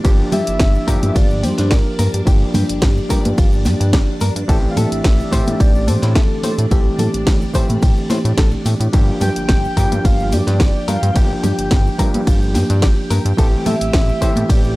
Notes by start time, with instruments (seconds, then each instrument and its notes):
0.04 analog synth bass G1, reed electric piano F3 A#3 D4 G4, string machine D4 D5, clean electric guitar G4, kick, closed hi-hat, ride, cabasa
0.32 analog synth bass G2, clean electric guitar G4, soft synth lead E5, open hi-hat, high conga, low conga, cabasa
0.47 analog synth bass G1, closed hi-hat, cabasa
0.59 analog synth bass G1, kick, snare, closed hi-hat, ride, cabasa
0.75 cabasa
0.87 analog synth bass G2, reed electric piano F3 A#3 D4 G4, clean electric guitar A#4, kick, open hi-hat, cabasa
1.03 analog synth bass G2, closed hi-hat, high conga, cabasa
1.15 analog synth bass G1, clean electric guitar F4, soft synth lead D5, kick, closed hi-hat, ride, cabasa
1.31 cabasa
1.43 analog synth bass G2, clean electric guitar G4, soft synth lead C5, open hi-hat, high conga, cabasa
1.58 analog synth bass G2, clean electric guitar D4, snare, closed hi-hat, cabasa
1.71 analog synth bass G1, soft synth lead A#4, clean electric guitar D5, kick, snare, closed hi-hat, ride, cabasa
1.99 analog synth bass G2, clean electric guitar A#4, open hi-hat, high conga, cabasa
2.14 analog synth bass G2, closed hi-hat, cabasa
2.26 analog synth bass G1, reed electric piano F3 A#3 D4 G4, clean electric guitar G4, soft synth lead G4, kick, closed hi-hat, ride, cabasa
2.54 analog synth bass G2, clean electric guitar G4, open hi-hat, high conga, low conga, cabasa
2.69 analog synth bass G1, closed hi-hat, cabasa
2.82 analog synth bass G1, kick, snare, closed hi-hat, ride, cabasa
2.97 cabasa
3.09 analog synth bass G2, reed electric piano F3 A#3 D4 G4, clean electric guitar A#4, kick, open hi-hat, cabasa
3.25 analog synth bass G2, closed hi-hat, high conga, cabasa
3.38 analog synth bass G1, clean electric guitar F4, kick, closed hi-hat, ride, cabasa
3.52 cabasa
3.65 analog synth bass G2, clean electric guitar G4, snare, open hi-hat, high conga, cabasa
3.80 analog synth bass G2, clean electric guitar D4, closed hi-hat, cabasa
3.93 analog synth bass G1, clean electric guitar D5, kick, snare, closed hi-hat, ride, cabasa
4.21 analog synth bass G2, clean electric guitar A#4, open hi-hat, high conga, cabasa
4.36 analog synth bass G2, closed hi-hat, cabasa
4.48 analog synth bass A1, reed electric piano E3 A3 C4 G4, clean electric guitar A4, kick, closed hi-hat, ride, cabasa
4.70 soft synth lead F5
4.77 analog synth bass A2, clean electric guitar A4, soft synth lead E5, open hi-hat, high conga, low conga, cabasa
4.92 analog synth bass A1, closed hi-hat, cabasa
5.04 analog synth bass A1, kick, snare, closed hi-hat, ride, cabasa
5.20 cabasa
5.31 analog synth bass A2, reed electric piano E3 A3 C4 G4, clean electric guitar C5, kick, open hi-hat, cabasa
5.47 analog synth bass A2, closed hi-hat, high conga, cabasa
5.60 analog synth bass A1, clean electric guitar G4, soft synth lead D5, kick, closed hi-hat, ride, cabasa
5.75 cabasa
5.88 analog synth bass A2, clean electric guitar A4, soft synth lead C5, open hi-hat, high conga, cabasa
6.02 analog synth bass A2, clean electric guitar E4, snare, closed hi-hat, cabasa
6.15 analog synth bass A1, soft synth lead A4, clean electric guitar E5, kick, snare, closed hi-hat, ride, cabasa
6.43 analog synth bass A2, clean electric guitar C5, open hi-hat, high conga, cabasa
6.58 analog synth bass A2, closed hi-hat, cabasa
6.71 analog synth bass A1, reed electric piano E3 A3 C4 G4, soft synth lead G4, clean electric guitar A4, kick, closed hi-hat, ride, cabasa
6.99 analog synth bass A2, clean electric guitar A4, open hi-hat, high conga, low conga, cabasa
7.14 analog synth bass A1, closed hi-hat, cabasa
7.27 analog synth bass A1, kick, snare, closed hi-hat, ride, cabasa
7.42 cabasa
7.53 analog synth bass A2, reed electric piano E3 A3 C4 G4, clean electric guitar C5, kick, open hi-hat, cabasa
7.69 analog synth bass A2, closed hi-hat, high conga, cabasa
7.82 analog synth bass A1, clean electric guitar G4, kick, closed hi-hat, ride, cabasa
7.97 cabasa
8.10 analog synth bass A2, clean electric guitar C5, snare, open hi-hat, high conga, cabasa
8.25 analog synth bass A2, closed hi-hat, cabasa
8.38 analog synth bass A1, clean electric guitar A4, kick, snare, closed hi-hat, ride, cabasa
8.51 cabasa
8.65 analog synth bass A2, clean electric guitar G4, open hi-hat, high conga, cabasa
8.80 analog synth bass A2, closed hi-hat, cabasa
8.93 analog synth bass G1, reed electric piano F3 A#3 D4 G4, clean electric guitar G4, string machine G4 G5, kick, closed hi-hat, ride, cabasa
9.21 analog synth bass G2, clean electric guitar G4, soft synth lead G5, open hi-hat, high conga, low conga, cabasa
9.36 analog synth bass G1, closed hi-hat, cabasa
9.49 analog synth bass G1, kick, snare, closed hi-hat, ride, cabasa
9.65 cabasa
9.76 analog synth bass G2, reed electric piano F3 A#3 D4 G4, clean electric guitar A#4, kick, open hi-hat, cabasa
9.92 analog synth bass G2, closed hi-hat, high conga, cabasa
10.05 analog synth bass G1, clean electric guitar F4, soft synth lead F5, kick, closed hi-hat, ride, cabasa
10.20 cabasa
10.32 analog synth bass G2, clean electric guitar G4, soft synth lead D5, open hi-hat, high conga, cabasa
10.47 analog synth bass G2, clean electric guitar D4, snare, closed hi-hat, cabasa
10.60 analog synth bass G1, clean electric guitar D5, kick, snare, closed hi-hat, ride, cabasa
10.88 analog synth bass G2, clean electric guitar A#4, soft synth lead F5, open hi-hat, high conga, cabasa
11.03 analog synth bass G2, closed hi-hat, cabasa
11.15 analog synth bass G1, reed electric piano F3 A#3 D4 G4, clean electric guitar G4, soft synth lead G5, kick, closed hi-hat, ride, cabasa
11.43 analog synth bass G2, clean electric guitar G4, open hi-hat, high conga, low conga, cabasa
11.59 analog synth bass G1, closed hi-hat, cabasa
11.71 analog synth bass G1, kick, snare, closed hi-hat, ride, cabasa
11.87 cabasa
11.98 analog synth bass G2, reed electric piano F3 A#3 D4 G4, clean electric guitar A#4, kick, open hi-hat, cabasa
12.14 analog synth bass G2, closed hi-hat, high conga, cabasa
12.27 analog synth bass G1, clean electric guitar F4, kick, closed hi-hat, ride, cabasa
12.42 cabasa
12.54 analog synth bass G2, clean electric guitar G4, snare, open hi-hat, high conga, cabasa
12.70 analog synth bass G2, clean electric guitar D4, closed hi-hat, cabasa
12.82 analog synth bass G1, clean electric guitar D5, kick, snare, closed hi-hat, ride, cabasa
13.10 analog synth bass G2, clean electric guitar A#4, open hi-hat, high conga, cabasa
13.25 analog synth bass G2, closed hi-hat, cabasa
13.37 analog synth bass A1, reed electric piano E3 A3 C4 G4, clean electric guitar A4, kick, closed hi-hat, ride, cabasa
13.66 analog synth bass A2, clean electric guitar A4, soft synth lead E5, open hi-hat, high conga, low conga, cabasa
13.81 analog synth bass A1, closed hi-hat, cabasa
13.93 analog synth bass A1, kick, snare, closed hi-hat, ride, cabasa
14.09 cabasa
14.21 analog synth bass A2, reed electric piano E3 A3 C4 G4, clean electric guitar C5, kick, open hi-hat, cabasa
14.36 analog synth bass A2, closed hi-hat, high conga, cabasa
14.49 analog synth bass A1, clean electric guitar G4, soft synth lead D5, kick, closed hi-hat, ride, cabasa
14.64 cabasa